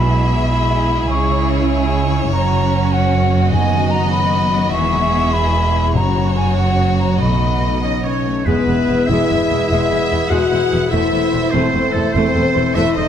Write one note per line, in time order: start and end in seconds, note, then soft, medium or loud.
0.00 1.06 B1 soft
0.00 0.45 B2 medium
0.00 1.05 B2 soft
0.00 1.11 B2 soft
0.00 0.48 G#3 soft
0.00 0.49 E4 soft
0.00 2.27 E4 soft
0.00 2.32 G#4 soft
0.00 1.09 E5 soft
0.00 0.47 B5 medium
0.09 1.12 B3 soft
0.29 0.68 E4 soft
0.48 1.08 G#3 soft
0.48 1.09 E4 soft
0.48 2.33 E5 soft
0.48 1.08 B5 medium
0.69 1.49 E4 soft
0.90 2.10 G#3 soft
1.09 2.31 C#2 soft
1.09 2.33 C#3 soft
1.09 2.32 C#3 medium
1.09 1.66 G#3 medium
1.09 1.67 E4 soft
1.09 3.53 C#5 soft
1.09 1.49 C#6 medium
1.30 2.71 C#4 soft
1.50 1.89 E4 soft
1.68 2.29 G#3 soft
1.68 2.29 E4 soft
1.68 2.91 C#5 soft
1.73 2.28 G#5 medium
1.90 2.33 E4 soft
2.11 2.33 G#3 soft
2.29 4.70 F#1 medium
2.29 3.51 F#2 medium
2.29 4.70 F#2 medium
2.29 2.90 F#3 medium
2.29 2.89 C#4 medium
2.29 3.52 C#4 medium
2.29 4.70 F#4 medium
2.29 2.95 A#5 medium
2.51 3.54 C#3 soft
2.72 3.11 C#4 soft
2.90 3.51 F#3 medium
2.90 3.50 C#4 medium
2.90 3.54 C#5 soft
2.90 3.52 F#5 medium
3.12 3.54 C#4 soft
3.33 4.53 F#3 soft
3.50 4.09 F#2 medium
3.50 4.75 F#2 medium
3.50 4.11 F#3 medium
3.50 5.92 B3 medium
3.50 4.11 D#4 medium
3.50 4.70 D#5 medium
3.50 3.92 G#5 medium
3.73 4.75 D#3 soft
3.91 4.32 D#4 soft
3.91 4.11 A#5 medium
4.11 4.72 F#3 medium
4.11 4.72 D#4 medium
4.11 5.32 B4 soft
4.11 4.72 B5 medium
4.34 4.76 D#4 soft
4.54 4.76 F#3 soft
4.73 5.94 E1 medium
4.73 5.98 E2 soft
4.73 5.94 E2 medium
4.73 5.33 G#3 medium
4.73 5.34 E4 soft
4.73 5.96 G#4 soft
4.73 5.96 E5 soft
4.73 5.35 C#6 medium
4.94 5.98 B2 soft
5.14 5.53 E4 soft
5.33 5.95 G#3 medium
5.33 5.95 E4 medium
5.33 5.97 B4 soft
5.33 5.95 B5 medium
5.75 5.98 G#3 soft
5.95 7.21 F#1 soft
5.95 6.53 F#2 medium
5.95 7.22 F#2 soft
5.95 7.21 F#2 soft
5.95 7.18 F#3 soft
5.95 6.55 F#3 medium
5.95 6.54 C#4 soft
5.95 7.83 F#4 soft
5.95 7.18 C#5 soft
5.95 6.36 A#5 medium
6.16 7.22 C#3 soft
6.36 6.77 C#4 soft
6.36 6.57 G#5 medium
6.55 7.04 F#3 soft
6.55 7.04 C#4 soft
6.55 7.82 F#4 soft
6.55 6.98 F#5 medium
6.78 7.22 C#4 soft
6.99 7.41 F#3 soft
6.99 7.20 A#5 soft
7.20 8.26 B1 soft
7.20 8.26 B2 soft
7.20 8.48 B2 soft
7.20 7.79 A3 soft
7.20 7.84 A3 soft
7.20 7.80 D#4 soft
7.20 8.25 D#5 soft
7.20 7.82 B5 medium
7.42 8.48 F#3 soft
7.62 8.03 D#4 soft
7.81 7.91 C#4 soft
7.81 8.02 D#4 medium
7.81 8.48 F#4 soft
7.81 8.05 D#5 soft
7.81 8.03 D#5 soft
8.02 8.13 B3 soft
8.02 8.44 C#4 medium
8.02 8.48 D#4 soft
8.02 8.47 C#5 soft
8.02 8.46 C#5 soft
8.26 8.48 A3 soft
8.26 8.46 A3 soft
8.45 8.55 E1 soft
8.45 10.91 E2 soft
8.45 8.55 E2 medium
8.45 13.08 E3 soft
8.45 8.66 G#3 soft
8.45 10.90 G#3 soft
8.45 9.07 B3 medium
8.45 13.08 E4 soft
8.45 10.92 G#4 soft
8.45 9.09 B4 medium
8.45 10.88 B4 medium
8.45 9.08 B4 medium
8.45 10.88 E5 soft
8.67 8.76 E1 soft
8.67 8.76 E2 soft
8.67 8.75 G#3 soft
8.67 9.07 B3 soft
8.88 8.97 E1 soft
8.88 8.97 E2 soft
8.88 8.97 E3 soft
8.88 10.09 E4 soft
9.07 9.17 E1 medium
9.07 9.18 E2 medium
9.07 9.29 G#3 soft
9.07 9.48 B3 soft
9.07 9.67 E4 medium
9.07 9.67 E5 medium
9.07 9.68 E5 medium
9.29 9.39 E1 soft
9.29 9.39 E2 soft
9.29 9.69 B2 soft
9.29 9.38 G#3 soft
9.50 9.59 E1 soft
9.50 9.59 E2 soft
9.50 9.59 E3 soft
9.50 9.89 B3 soft
9.68 9.79 E1 medium
9.68 9.79 E2 medium
9.68 10.50 B2 soft
9.68 9.89 G#3 medium
9.68 10.29 E4 medium
9.68 10.32 E5 medium
9.68 10.30 E5 medium
9.90 10.00 E1 soft
9.90 9.99 E2 soft
9.90 9.99 G#3 soft
9.90 10.29 B3 soft
10.10 10.20 E1 soft
10.10 10.19 E2 soft
10.10 10.19 E3 soft
10.10 11.31 E4 soft
10.29 10.40 E1 medium
10.29 10.39 E2 medium
10.29 10.50 G#3 medium
10.29 10.70 B3 soft
10.29 10.90 F#4 medium
10.29 10.90 F#5 medium
10.29 10.92 F#5 medium
10.51 10.59 E1 soft
10.51 10.60 E2 soft
10.51 10.94 B2 soft
10.51 10.59 G#3 soft
10.71 10.81 E1 soft
10.71 10.80 E2 soft
10.71 10.79 E3 soft
10.71 10.94 B3 soft
10.90 11.01 E1 medium
10.90 13.08 E2 soft
10.90 11.00 E2 medium
10.90 13.08 A3 medium
10.90 11.11 A3 medium
10.90 11.51 E4 medium
10.90 13.08 A4 soft
10.90 13.08 C5 soft
10.90 11.52 E5 medium
11.12 11.22 E1 soft
11.12 11.21 E2 soft
11.12 11.21 A3 soft
11.12 11.52 C4 soft
11.33 11.42 E1 soft
11.33 11.41 E2 soft
11.33 11.41 E3 soft
11.51 11.63 E1 medium
11.51 11.62 E2 medium
11.51 11.73 A3 medium
11.51 11.93 C4 medium
11.51 11.93 C4 soft
11.51 11.94 C5 medium
11.73 11.82 E1 soft
11.73 11.83 E2 soft
11.73 12.12 E3 soft
11.73 11.82 A3 soft
11.92 12.03 E1 soft
11.92 12.03 E2 soft
11.92 12.03 E3 soft
11.92 12.14 A3 medium
11.92 12.34 C4 soft
11.92 12.12 A4 soft
11.92 12.15 A4 medium
12.12 12.23 E1 medium
12.12 12.23 E2 medium
12.12 12.95 E3 soft
12.12 12.33 A3 medium
12.12 12.74 C4 medium
12.12 12.76 C5 medium
12.12 12.74 C5 medium
12.35 12.43 E1 soft
12.35 12.43 E2 soft
12.35 12.43 A3 soft
12.35 12.75 C4 soft
12.55 12.64 E1 soft
12.55 12.63 E2 soft
12.55 12.63 E3 soft
12.55 13.08 E4 soft
12.75 12.84 E1 medium
12.75 12.84 E2 medium
12.75 12.95 A3 medium
12.75 13.08 C4 soft
12.75 12.96 E4 medium
12.75 12.96 E5 medium
12.75 12.95 E5 medium
12.95 13.05 E1 soft
12.95 13.05 E2 soft
12.95 13.08 E3 soft
12.95 13.06 A3 soft
12.95 13.08 D#4 medium
12.95 13.08 D#5 medium